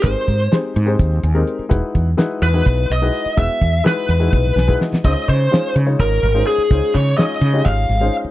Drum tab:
HH |x-x-x-x-x-x-x-|x-x-x-x-x-x-x-|x-x-x-x-------|x-x-x-x-x-x-x-|
SD |----o---------|----o---------|----o-----o-oo|----o---------|
T1 |--------------|--------------|--------oo----|--------------|
BD |o-o-----o-----|o-o-----o-----|o-o-----o--o--|o-o-----o-----|

HH |x-x-x-x-x-x-x-|
SD |--o-o-----o---|
T1 |--------------|
BD |o-o-----o-----|